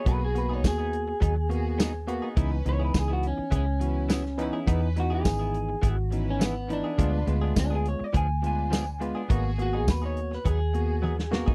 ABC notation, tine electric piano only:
X:1
M:4/4
L:1/8
Q:1/4=104
K:G#m
V:1 name="Tine electric piano"
[A,B,F] [A,B,F]3 z [A,B,F] z [A,B,F] | [E,B,D] [E,B,D]3 z [E,B,F] z [E,B,D] | [E,B,D] [E,B,D]3 z [E,B,D] z [E,B,D] | [_A,B,=F] [A,B,F]3 z [A,B,F] z [A,B,F] |
[A,B,F] [A,B,F]3 z [A,B,F] z [A,B,F] |]